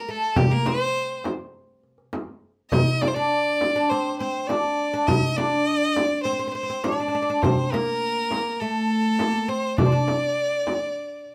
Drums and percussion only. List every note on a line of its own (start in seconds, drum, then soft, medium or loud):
0.36 darbuka dum loud
0.36 frame drum loud
0.51 darbuka ka soft
0.66 darbuka tek medium
0.66 frame drum medium
1.24 darbuka tek medium
1.24 frame drum medium
1.83 darbuka ka soft
1.98 darbuka ka soft
2.13 darbuka tek medium
2.13 frame drum medium
2.72 darbuka dum loud
2.72 frame drum loud
3.02 darbuka tek medium
3.02 frame drum medium
3.61 darbuka tek medium
3.61 frame drum medium
3.76 darbuka ka soft
4.49 darbuka tek medium
4.49 frame drum medium
5.08 darbuka dum medium
5.08 frame drum loud
5.38 frame drum medium
5.96 darbuka tek medium
5.96 frame drum medium
6.11 darbuka ka soft
6.84 darbuka tek medium
6.84 frame drum medium
7.43 frame drum loud
7.43 darbuka dum medium
7.58 darbuka ka soft
7.72 darbuka tek medium
7.72 frame drum medium
8.31 darbuka tek medium
8.31 frame drum medium
8.46 darbuka ka soft
8.90 darbuka ka soft
9.19 darbuka tek medium
9.19 frame drum medium
9.78 darbuka dum loud
9.78 frame drum medium
9.93 darbuka ka soft
10.08 darbuka tek medium
10.08 frame drum medium
10.67 darbuka tek medium
10.67 frame drum medium
10.82 darbuka ka soft
11.26 darbuka ka soft